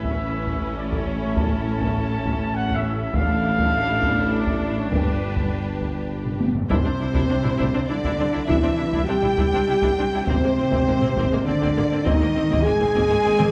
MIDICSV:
0, 0, Header, 1, 11, 480
1, 0, Start_track
1, 0, Tempo, 594059
1, 1104, Time_signature, 3, 2, 24, 8
1, 10919, End_track
2, 0, Start_track
2, 0, Title_t, "Trumpet section"
2, 0, Program_c, 0, 61
2, 0, Note_on_c, 0, 76, 70
2, 593, Note_off_c, 0, 76, 0
2, 626, Note_on_c, 0, 74, 67
2, 782, Note_off_c, 0, 74, 0
2, 789, Note_on_c, 0, 73, 65
2, 935, Note_off_c, 0, 73, 0
2, 945, Note_on_c, 0, 73, 59
2, 1100, Note_on_c, 0, 81, 78
2, 1101, Note_off_c, 0, 73, 0
2, 2041, Note_off_c, 0, 81, 0
2, 2060, Note_on_c, 0, 78, 94
2, 2220, Note_off_c, 0, 78, 0
2, 2230, Note_on_c, 0, 76, 78
2, 2382, Note_off_c, 0, 76, 0
2, 2392, Note_on_c, 0, 76, 76
2, 2542, Note_on_c, 0, 77, 97
2, 2543, Note_off_c, 0, 76, 0
2, 3497, Note_on_c, 0, 74, 70
2, 3500, Note_off_c, 0, 77, 0
2, 3850, Note_off_c, 0, 74, 0
2, 3864, Note_on_c, 0, 73, 56
2, 3976, Note_on_c, 0, 71, 65
2, 3981, Note_off_c, 0, 73, 0
2, 4917, Note_off_c, 0, 71, 0
2, 10919, End_track
3, 0, Start_track
3, 0, Title_t, "Violin section"
3, 0, Program_c, 1, 48
3, 0, Note_on_c, 1, 64, 48
3, 2510, Note_off_c, 1, 64, 0
3, 2522, Note_on_c, 1, 64, 61
3, 3940, Note_off_c, 1, 64, 0
3, 3979, Note_on_c, 1, 67, 46
3, 5231, Note_off_c, 1, 67, 0
3, 5407, Note_on_c, 1, 72, 69
3, 6340, Note_off_c, 1, 72, 0
3, 6372, Note_on_c, 1, 74, 72
3, 6837, Note_on_c, 1, 76, 70
3, 6855, Note_off_c, 1, 74, 0
3, 7328, Note_off_c, 1, 76, 0
3, 7332, Note_on_c, 1, 79, 85
3, 8277, Note_off_c, 1, 79, 0
3, 8304, Note_on_c, 1, 72, 80
3, 9260, Note_on_c, 1, 74, 70
3, 9263, Note_off_c, 1, 72, 0
3, 9732, Note_off_c, 1, 74, 0
3, 9739, Note_on_c, 1, 75, 73
3, 10221, Note_off_c, 1, 75, 0
3, 10221, Note_on_c, 1, 80, 93
3, 10919, Note_off_c, 1, 80, 0
3, 10919, End_track
4, 0, Start_track
4, 0, Title_t, "Violin section"
4, 0, Program_c, 2, 48
4, 0, Note_on_c, 2, 71, 48
4, 593, Note_off_c, 2, 71, 0
4, 622, Note_on_c, 2, 69, 54
4, 2527, Note_off_c, 2, 69, 0
4, 2536, Note_on_c, 2, 69, 62
4, 3948, Note_off_c, 2, 69, 0
4, 3969, Note_on_c, 2, 71, 52
4, 5226, Note_off_c, 2, 71, 0
4, 5416, Note_on_c, 2, 72, 73
4, 6345, Note_off_c, 2, 72, 0
4, 6372, Note_on_c, 2, 74, 64
4, 6848, Note_on_c, 2, 76, 65
4, 6855, Note_off_c, 2, 74, 0
4, 7324, Note_off_c, 2, 76, 0
4, 7332, Note_on_c, 2, 79, 75
4, 8296, Note_off_c, 2, 79, 0
4, 8299, Note_on_c, 2, 72, 74
4, 9241, Note_off_c, 2, 72, 0
4, 9264, Note_on_c, 2, 74, 74
4, 9734, Note_off_c, 2, 74, 0
4, 9746, Note_on_c, 2, 75, 82
4, 10225, Note_off_c, 2, 75, 0
4, 10226, Note_on_c, 2, 80, 80
4, 10919, Note_off_c, 2, 80, 0
4, 10919, End_track
5, 0, Start_track
5, 0, Title_t, "French horn section"
5, 0, Program_c, 3, 60
5, 0, Note_on_c, 3, 52, 51
5, 0, Note_on_c, 3, 61, 55
5, 2506, Note_off_c, 3, 61, 0
5, 2507, Note_off_c, 3, 52, 0
5, 2543, Note_on_c, 3, 62, 77
5, 2545, Note_on_c, 3, 52, 66
5, 3949, Note_off_c, 3, 52, 0
5, 3981, Note_on_c, 3, 50, 55
5, 5147, Note_off_c, 3, 50, 0
5, 5147, Note_off_c, 3, 62, 0
5, 5413, Note_on_c, 3, 60, 79
5, 6343, Note_off_c, 3, 60, 0
5, 6372, Note_on_c, 3, 62, 83
5, 6852, Note_on_c, 3, 64, 86
5, 6855, Note_off_c, 3, 62, 0
5, 7315, Note_on_c, 3, 67, 98
5, 7326, Note_off_c, 3, 64, 0
5, 8277, Note_on_c, 3, 60, 91
5, 8288, Note_off_c, 3, 67, 0
5, 9250, Note_off_c, 3, 60, 0
5, 9251, Note_on_c, 3, 62, 79
5, 9726, Note_on_c, 3, 63, 92
5, 9737, Note_off_c, 3, 62, 0
5, 10200, Note_on_c, 3, 68, 112
5, 10205, Note_off_c, 3, 63, 0
5, 10919, Note_off_c, 3, 68, 0
5, 10919, End_track
6, 0, Start_track
6, 0, Title_t, "Viola section"
6, 0, Program_c, 4, 48
6, 0, Note_on_c, 4, 61, 47
6, 2512, Note_off_c, 4, 61, 0
6, 2536, Note_on_c, 4, 62, 59
6, 5254, Note_off_c, 4, 62, 0
6, 5413, Note_on_c, 4, 62, 61
6, 5413, Note_on_c, 4, 64, 65
6, 5462, Note_off_c, 4, 62, 0
6, 5462, Note_off_c, 4, 64, 0
6, 5534, Note_on_c, 4, 62, 40
6, 5535, Note_on_c, 4, 60, 37
6, 5583, Note_off_c, 4, 60, 0
6, 5583, Note_off_c, 4, 62, 0
6, 5655, Note_on_c, 4, 62, 44
6, 5657, Note_on_c, 4, 64, 47
6, 5703, Note_off_c, 4, 62, 0
6, 5705, Note_off_c, 4, 64, 0
6, 5766, Note_on_c, 4, 62, 58
6, 5769, Note_on_c, 4, 64, 71
6, 5816, Note_off_c, 4, 62, 0
6, 5819, Note_off_c, 4, 64, 0
6, 5890, Note_on_c, 4, 62, 49
6, 5894, Note_on_c, 4, 60, 46
6, 5939, Note_off_c, 4, 62, 0
6, 5943, Note_off_c, 4, 60, 0
6, 6008, Note_on_c, 4, 62, 51
6, 6010, Note_on_c, 4, 64, 57
6, 6058, Note_off_c, 4, 62, 0
6, 6060, Note_off_c, 4, 64, 0
6, 6128, Note_on_c, 4, 64, 64
6, 6131, Note_on_c, 4, 62, 69
6, 6178, Note_off_c, 4, 64, 0
6, 6180, Note_off_c, 4, 62, 0
6, 6253, Note_on_c, 4, 62, 49
6, 6254, Note_on_c, 4, 60, 56
6, 6302, Note_off_c, 4, 62, 0
6, 6303, Note_off_c, 4, 60, 0
6, 6373, Note_on_c, 4, 62, 46
6, 6373, Note_on_c, 4, 64, 52
6, 6422, Note_off_c, 4, 62, 0
6, 6422, Note_off_c, 4, 64, 0
6, 6499, Note_on_c, 4, 64, 60
6, 6501, Note_on_c, 4, 62, 69
6, 6547, Note_off_c, 4, 64, 0
6, 6549, Note_off_c, 4, 62, 0
6, 6618, Note_on_c, 4, 60, 49
6, 6620, Note_on_c, 4, 62, 49
6, 6666, Note_off_c, 4, 60, 0
6, 6668, Note_off_c, 4, 62, 0
6, 6726, Note_on_c, 4, 62, 65
6, 6728, Note_on_c, 4, 64, 55
6, 6777, Note_off_c, 4, 62, 0
6, 6778, Note_off_c, 4, 64, 0
6, 6853, Note_on_c, 4, 64, 70
6, 6854, Note_on_c, 4, 62, 72
6, 6902, Note_off_c, 4, 64, 0
6, 6903, Note_off_c, 4, 62, 0
6, 6972, Note_on_c, 4, 60, 53
6, 6974, Note_on_c, 4, 62, 50
6, 7021, Note_off_c, 4, 60, 0
6, 7023, Note_off_c, 4, 62, 0
6, 7090, Note_on_c, 4, 62, 42
6, 7091, Note_on_c, 4, 64, 41
6, 7140, Note_off_c, 4, 62, 0
6, 7141, Note_off_c, 4, 64, 0
6, 7216, Note_on_c, 4, 62, 65
6, 7218, Note_on_c, 4, 64, 68
6, 7265, Note_off_c, 4, 62, 0
6, 7266, Note_off_c, 4, 64, 0
6, 7336, Note_on_c, 4, 62, 54
6, 7340, Note_on_c, 4, 60, 54
6, 7385, Note_off_c, 4, 62, 0
6, 7387, Note_off_c, 4, 60, 0
6, 7456, Note_on_c, 4, 64, 51
6, 7458, Note_on_c, 4, 62, 50
6, 7504, Note_off_c, 4, 64, 0
6, 7506, Note_off_c, 4, 62, 0
6, 7576, Note_on_c, 4, 62, 69
6, 7576, Note_on_c, 4, 64, 76
6, 7624, Note_off_c, 4, 62, 0
6, 7624, Note_off_c, 4, 64, 0
6, 7709, Note_on_c, 4, 62, 55
6, 7710, Note_on_c, 4, 60, 60
6, 7755, Note_off_c, 4, 62, 0
6, 7756, Note_off_c, 4, 60, 0
6, 7821, Note_on_c, 4, 62, 60
6, 7821, Note_on_c, 4, 64, 54
6, 7869, Note_off_c, 4, 62, 0
6, 7869, Note_off_c, 4, 64, 0
6, 7940, Note_on_c, 4, 62, 67
6, 7941, Note_on_c, 4, 64, 62
6, 7988, Note_off_c, 4, 62, 0
6, 7988, Note_off_c, 4, 64, 0
6, 8070, Note_on_c, 4, 60, 43
6, 8070, Note_on_c, 4, 62, 48
6, 8116, Note_off_c, 4, 60, 0
6, 8116, Note_off_c, 4, 62, 0
6, 8191, Note_on_c, 4, 64, 69
6, 8198, Note_on_c, 4, 62, 59
6, 8237, Note_off_c, 4, 64, 0
6, 8243, Note_off_c, 4, 62, 0
6, 8309, Note_on_c, 4, 60, 64
6, 8312, Note_on_c, 4, 58, 67
6, 8355, Note_off_c, 4, 60, 0
6, 8357, Note_off_c, 4, 58, 0
6, 8436, Note_on_c, 4, 56, 46
6, 8438, Note_on_c, 4, 58, 45
6, 8481, Note_off_c, 4, 56, 0
6, 8483, Note_off_c, 4, 58, 0
6, 8549, Note_on_c, 4, 58, 45
6, 8549, Note_on_c, 4, 60, 43
6, 8595, Note_off_c, 4, 58, 0
6, 8596, Note_off_c, 4, 60, 0
6, 8671, Note_on_c, 4, 60, 64
6, 8673, Note_on_c, 4, 58, 62
6, 8717, Note_off_c, 4, 60, 0
6, 8718, Note_off_c, 4, 58, 0
6, 8791, Note_on_c, 4, 58, 58
6, 8794, Note_on_c, 4, 56, 54
6, 8837, Note_off_c, 4, 58, 0
6, 8839, Note_off_c, 4, 56, 0
6, 8906, Note_on_c, 4, 58, 56
6, 8908, Note_on_c, 4, 60, 56
6, 8953, Note_off_c, 4, 58, 0
6, 8955, Note_off_c, 4, 60, 0
6, 9029, Note_on_c, 4, 58, 80
6, 9033, Note_on_c, 4, 60, 76
6, 9075, Note_off_c, 4, 58, 0
6, 9079, Note_off_c, 4, 60, 0
6, 9148, Note_on_c, 4, 56, 56
6, 9152, Note_on_c, 4, 58, 54
6, 9195, Note_off_c, 4, 56, 0
6, 9198, Note_off_c, 4, 58, 0
6, 9269, Note_on_c, 4, 58, 56
6, 9271, Note_on_c, 4, 60, 52
6, 9315, Note_off_c, 4, 58, 0
6, 9317, Note_off_c, 4, 60, 0
6, 9384, Note_on_c, 4, 58, 77
6, 9387, Note_on_c, 4, 60, 75
6, 9432, Note_off_c, 4, 58, 0
6, 9434, Note_off_c, 4, 60, 0
6, 9509, Note_on_c, 4, 56, 54
6, 9511, Note_on_c, 4, 58, 51
6, 9555, Note_off_c, 4, 56, 0
6, 9557, Note_off_c, 4, 58, 0
6, 9623, Note_on_c, 4, 58, 66
6, 9623, Note_on_c, 4, 60, 66
6, 9670, Note_off_c, 4, 58, 0
6, 9671, Note_off_c, 4, 60, 0
6, 9744, Note_on_c, 4, 60, 69
6, 9748, Note_on_c, 4, 58, 76
6, 9791, Note_off_c, 4, 60, 0
6, 9794, Note_off_c, 4, 58, 0
6, 9860, Note_on_c, 4, 56, 45
6, 9862, Note_on_c, 4, 58, 56
6, 9908, Note_off_c, 4, 56, 0
6, 9910, Note_off_c, 4, 58, 0
6, 9984, Note_on_c, 4, 58, 51
6, 9986, Note_on_c, 4, 60, 48
6, 10032, Note_off_c, 4, 58, 0
6, 10034, Note_off_c, 4, 60, 0
6, 10104, Note_on_c, 4, 58, 73
6, 10104, Note_on_c, 4, 60, 71
6, 10151, Note_off_c, 4, 60, 0
6, 10152, Note_off_c, 4, 58, 0
6, 10225, Note_on_c, 4, 56, 55
6, 10225, Note_on_c, 4, 58, 57
6, 10272, Note_off_c, 4, 56, 0
6, 10272, Note_off_c, 4, 58, 0
6, 10344, Note_on_c, 4, 58, 60
6, 10344, Note_on_c, 4, 60, 51
6, 10392, Note_off_c, 4, 58, 0
6, 10392, Note_off_c, 4, 60, 0
6, 10458, Note_on_c, 4, 58, 86
6, 10459, Note_on_c, 4, 60, 70
6, 10507, Note_off_c, 4, 58, 0
6, 10508, Note_off_c, 4, 60, 0
6, 10584, Note_on_c, 4, 56, 65
6, 10585, Note_on_c, 4, 58, 61
6, 10632, Note_off_c, 4, 56, 0
6, 10633, Note_off_c, 4, 58, 0
6, 10703, Note_on_c, 4, 60, 58
6, 10707, Note_on_c, 4, 58, 63
6, 10751, Note_off_c, 4, 60, 0
6, 10754, Note_off_c, 4, 58, 0
6, 10816, Note_on_c, 4, 58, 81
6, 10816, Note_on_c, 4, 60, 74
6, 10865, Note_off_c, 4, 58, 0
6, 10866, Note_off_c, 4, 60, 0
6, 10919, End_track
7, 0, Start_track
7, 0, Title_t, "Cello section"
7, 0, Program_c, 5, 48
7, 0, Note_on_c, 5, 45, 53
7, 2507, Note_off_c, 5, 45, 0
7, 2538, Note_on_c, 5, 45, 63
7, 3948, Note_off_c, 5, 45, 0
7, 3972, Note_on_c, 5, 43, 45
7, 5227, Note_off_c, 5, 43, 0
7, 5413, Note_on_c, 5, 48, 65
7, 6343, Note_off_c, 5, 48, 0
7, 6372, Note_on_c, 5, 50, 61
7, 6855, Note_off_c, 5, 50, 0
7, 6855, Note_on_c, 5, 52, 71
7, 7327, Note_off_c, 5, 52, 0
7, 7340, Note_on_c, 5, 55, 75
7, 8281, Note_off_c, 5, 55, 0
7, 8301, Note_on_c, 5, 48, 72
7, 9262, Note_off_c, 5, 48, 0
7, 9264, Note_on_c, 5, 50, 71
7, 9743, Note_off_c, 5, 50, 0
7, 9749, Note_on_c, 5, 51, 77
7, 10217, Note_off_c, 5, 51, 0
7, 10227, Note_on_c, 5, 56, 95
7, 10919, Note_off_c, 5, 56, 0
7, 10919, End_track
8, 0, Start_track
8, 0, Title_t, "Timpani"
8, 0, Program_c, 6, 47
8, 2539, Note_on_c, 6, 45, 64
8, 3226, Note_off_c, 6, 45, 0
8, 10919, End_track
9, 0, Start_track
9, 0, Title_t, "Double bass section"
9, 0, Program_c, 7, 48
9, 0, Note_on_c, 7, 33, 53
9, 2508, Note_off_c, 7, 33, 0
9, 2538, Note_on_c, 7, 33, 68
9, 3949, Note_off_c, 7, 33, 0
9, 3976, Note_on_c, 7, 31, 49
9, 5230, Note_off_c, 7, 31, 0
9, 5415, Note_on_c, 7, 36, 64
9, 5463, Note_off_c, 7, 36, 0
9, 5544, Note_on_c, 7, 36, 46
9, 5591, Note_off_c, 7, 36, 0
9, 5662, Note_on_c, 7, 36, 43
9, 5709, Note_off_c, 7, 36, 0
9, 5773, Note_on_c, 7, 36, 76
9, 5822, Note_off_c, 7, 36, 0
9, 5902, Note_on_c, 7, 36, 58
9, 5949, Note_off_c, 7, 36, 0
9, 6027, Note_on_c, 7, 36, 46
9, 6073, Note_off_c, 7, 36, 0
9, 6138, Note_on_c, 7, 36, 65
9, 6186, Note_off_c, 7, 36, 0
9, 6263, Note_on_c, 7, 36, 52
9, 6310, Note_off_c, 7, 36, 0
9, 6382, Note_on_c, 7, 36, 49
9, 6429, Note_off_c, 7, 36, 0
9, 6503, Note_on_c, 7, 36, 64
9, 6550, Note_off_c, 7, 36, 0
9, 6628, Note_on_c, 7, 36, 53
9, 6674, Note_off_c, 7, 36, 0
9, 6750, Note_on_c, 7, 36, 45
9, 6796, Note_off_c, 7, 36, 0
9, 6870, Note_on_c, 7, 36, 74
9, 6916, Note_off_c, 7, 36, 0
9, 6989, Note_on_c, 7, 36, 53
9, 7035, Note_off_c, 7, 36, 0
9, 7109, Note_on_c, 7, 36, 47
9, 7155, Note_off_c, 7, 36, 0
9, 7225, Note_on_c, 7, 36, 71
9, 7271, Note_off_c, 7, 36, 0
9, 7338, Note_on_c, 7, 36, 53
9, 7386, Note_off_c, 7, 36, 0
9, 7462, Note_on_c, 7, 36, 49
9, 7509, Note_off_c, 7, 36, 0
9, 7586, Note_on_c, 7, 36, 73
9, 7632, Note_off_c, 7, 36, 0
9, 7706, Note_on_c, 7, 36, 53
9, 7753, Note_off_c, 7, 36, 0
9, 7826, Note_on_c, 7, 36, 49
9, 7872, Note_off_c, 7, 36, 0
9, 7946, Note_on_c, 7, 36, 74
9, 7992, Note_off_c, 7, 36, 0
9, 8070, Note_on_c, 7, 36, 49
9, 8116, Note_off_c, 7, 36, 0
9, 8194, Note_on_c, 7, 36, 45
9, 8239, Note_off_c, 7, 36, 0
9, 8315, Note_on_c, 7, 32, 75
9, 8360, Note_off_c, 7, 32, 0
9, 8436, Note_on_c, 7, 32, 46
9, 8480, Note_off_c, 7, 32, 0
9, 8553, Note_on_c, 7, 32, 52
9, 8598, Note_off_c, 7, 32, 0
9, 8675, Note_on_c, 7, 32, 85
9, 8720, Note_off_c, 7, 32, 0
9, 8799, Note_on_c, 7, 32, 55
9, 8843, Note_off_c, 7, 32, 0
9, 8915, Note_on_c, 7, 32, 49
9, 8960, Note_off_c, 7, 32, 0
9, 9029, Note_on_c, 7, 32, 75
9, 9075, Note_off_c, 7, 32, 0
9, 9149, Note_on_c, 7, 32, 53
9, 9195, Note_off_c, 7, 32, 0
9, 9269, Note_on_c, 7, 32, 58
9, 9315, Note_off_c, 7, 32, 0
9, 9386, Note_on_c, 7, 32, 83
9, 9433, Note_off_c, 7, 32, 0
9, 9514, Note_on_c, 7, 32, 51
9, 9559, Note_off_c, 7, 32, 0
9, 9628, Note_on_c, 7, 32, 46
9, 9675, Note_off_c, 7, 32, 0
9, 9752, Note_on_c, 7, 32, 75
9, 9798, Note_off_c, 7, 32, 0
9, 9869, Note_on_c, 7, 32, 51
9, 9916, Note_off_c, 7, 32, 0
9, 9991, Note_on_c, 7, 32, 49
9, 10038, Note_off_c, 7, 32, 0
9, 10112, Note_on_c, 7, 32, 82
9, 10159, Note_off_c, 7, 32, 0
9, 10237, Note_on_c, 7, 32, 67
9, 10282, Note_off_c, 7, 32, 0
9, 10355, Note_on_c, 7, 32, 52
9, 10401, Note_off_c, 7, 32, 0
9, 10472, Note_on_c, 7, 32, 81
9, 10518, Note_off_c, 7, 32, 0
9, 10596, Note_on_c, 7, 32, 54
9, 10642, Note_off_c, 7, 32, 0
9, 10712, Note_on_c, 7, 32, 57
9, 10758, Note_off_c, 7, 32, 0
9, 10830, Note_on_c, 7, 32, 79
9, 10877, Note_off_c, 7, 32, 0
9, 10919, End_track
10, 0, Start_track
10, 0, Title_t, "Tuba"
10, 0, Program_c, 8, 58
10, 0, Note_on_c, 8, 33, 45
10, 2509, Note_off_c, 8, 33, 0
10, 2537, Note_on_c, 8, 33, 67
10, 3948, Note_off_c, 8, 33, 0
10, 3984, Note_on_c, 8, 31, 50
10, 5234, Note_off_c, 8, 31, 0
10, 5420, Note_on_c, 8, 36, 66
10, 5468, Note_off_c, 8, 36, 0
10, 5655, Note_on_c, 8, 36, 48
10, 5703, Note_off_c, 8, 36, 0
10, 5901, Note_on_c, 8, 36, 46
10, 5949, Note_off_c, 8, 36, 0
10, 6137, Note_on_c, 8, 36, 60
10, 6185, Note_off_c, 8, 36, 0
10, 6382, Note_on_c, 8, 36, 52
10, 6429, Note_off_c, 8, 36, 0
10, 6620, Note_on_c, 8, 36, 48
10, 6667, Note_off_c, 8, 36, 0
10, 6860, Note_on_c, 8, 36, 70
10, 6908, Note_off_c, 8, 36, 0
10, 7106, Note_on_c, 8, 36, 43
10, 7152, Note_off_c, 8, 36, 0
10, 7351, Note_on_c, 8, 36, 51
10, 7396, Note_off_c, 8, 36, 0
10, 7582, Note_on_c, 8, 36, 59
10, 7629, Note_off_c, 8, 36, 0
10, 7826, Note_on_c, 8, 36, 50
10, 7873, Note_off_c, 8, 36, 0
10, 8070, Note_on_c, 8, 36, 49
10, 8116, Note_off_c, 8, 36, 0
10, 8313, Note_on_c, 8, 32, 71
10, 8358, Note_off_c, 8, 32, 0
10, 8550, Note_on_c, 8, 32, 50
10, 8596, Note_off_c, 8, 32, 0
10, 8787, Note_on_c, 8, 32, 53
10, 8834, Note_off_c, 8, 32, 0
10, 9020, Note_on_c, 8, 32, 72
10, 9068, Note_off_c, 8, 32, 0
10, 9262, Note_on_c, 8, 32, 53
10, 9310, Note_off_c, 8, 32, 0
10, 9493, Note_on_c, 8, 32, 53
10, 9543, Note_off_c, 8, 32, 0
10, 9735, Note_on_c, 8, 32, 83
10, 9785, Note_off_c, 8, 32, 0
10, 9973, Note_on_c, 8, 32, 52
10, 10023, Note_off_c, 8, 32, 0
10, 10226, Note_on_c, 8, 32, 60
10, 10273, Note_off_c, 8, 32, 0
10, 10469, Note_on_c, 8, 32, 75
10, 10516, Note_off_c, 8, 32, 0
10, 10704, Note_on_c, 8, 32, 60
10, 10752, Note_off_c, 8, 32, 0
10, 10919, End_track
11, 0, Start_track
11, 0, Title_t, "Taiko and cinematic ensemble drums"
11, 32, Note_on_c, 9, 41, 75
11, 113, Note_off_c, 9, 41, 0
11, 384, Note_on_c, 9, 41, 69
11, 465, Note_off_c, 9, 41, 0
11, 749, Note_on_c, 9, 41, 61
11, 830, Note_off_c, 9, 41, 0
11, 1105, Note_on_c, 9, 41, 82
11, 1186, Note_off_c, 9, 41, 0
11, 1466, Note_on_c, 9, 41, 82
11, 1547, Note_off_c, 9, 41, 0
11, 1822, Note_on_c, 9, 41, 72
11, 1903, Note_off_c, 9, 41, 0
11, 2178, Note_on_c, 9, 41, 62
11, 2259, Note_off_c, 9, 41, 0
11, 2535, Note_on_c, 9, 41, 91
11, 2615, Note_off_c, 9, 41, 0
11, 2897, Note_on_c, 9, 41, 82
11, 2978, Note_off_c, 9, 41, 0
11, 3254, Note_on_c, 9, 41, 78
11, 3335, Note_off_c, 9, 41, 0
11, 3613, Note_on_c, 9, 41, 64
11, 3693, Note_off_c, 9, 41, 0
11, 3974, Note_on_c, 9, 41, 88
11, 4055, Note_off_c, 9, 41, 0
11, 4334, Note_on_c, 9, 41, 83
11, 4415, Note_off_c, 9, 41, 0
11, 4696, Note_on_c, 9, 41, 59
11, 4777, Note_off_c, 9, 41, 0
11, 5056, Note_on_c, 9, 45, 57
11, 5137, Note_off_c, 9, 45, 0
11, 5176, Note_on_c, 9, 48, 70
11, 5257, Note_off_c, 9, 48, 0
11, 5297, Note_on_c, 9, 43, 85
11, 5378, Note_off_c, 9, 43, 0
11, 5419, Note_on_c, 9, 41, 93
11, 5500, Note_off_c, 9, 41, 0
11, 5778, Note_on_c, 9, 41, 81
11, 5859, Note_off_c, 9, 41, 0
11, 6020, Note_on_c, 9, 45, 47
11, 6100, Note_off_c, 9, 45, 0
11, 6142, Note_on_c, 9, 41, 73
11, 6222, Note_off_c, 9, 41, 0
11, 6501, Note_on_c, 9, 41, 69
11, 6582, Note_off_c, 9, 41, 0
11, 6861, Note_on_c, 9, 41, 92
11, 6942, Note_off_c, 9, 41, 0
11, 7218, Note_on_c, 9, 41, 85
11, 7298, Note_off_c, 9, 41, 0
11, 7455, Note_on_c, 9, 45, 48
11, 7536, Note_off_c, 9, 45, 0
11, 7577, Note_on_c, 9, 41, 82
11, 7658, Note_off_c, 9, 41, 0
11, 7935, Note_on_c, 9, 41, 76
11, 8016, Note_off_c, 9, 41, 0
11, 8300, Note_on_c, 9, 41, 93
11, 8381, Note_off_c, 9, 41, 0
11, 8659, Note_on_c, 9, 41, 90
11, 8740, Note_off_c, 9, 41, 0
11, 8900, Note_on_c, 9, 45, 52
11, 8981, Note_off_c, 9, 45, 0
11, 9020, Note_on_c, 9, 41, 72
11, 9101, Note_off_c, 9, 41, 0
11, 9385, Note_on_c, 9, 41, 73
11, 9466, Note_off_c, 9, 41, 0
11, 9747, Note_on_c, 9, 41, 105
11, 9828, Note_off_c, 9, 41, 0
11, 10106, Note_on_c, 9, 41, 97
11, 10186, Note_off_c, 9, 41, 0
11, 10347, Note_on_c, 9, 45, 49
11, 10428, Note_off_c, 9, 45, 0
11, 10468, Note_on_c, 9, 41, 71
11, 10548, Note_off_c, 9, 41, 0
11, 10825, Note_on_c, 9, 47, 80
11, 10906, Note_off_c, 9, 47, 0
11, 10919, End_track
0, 0, End_of_file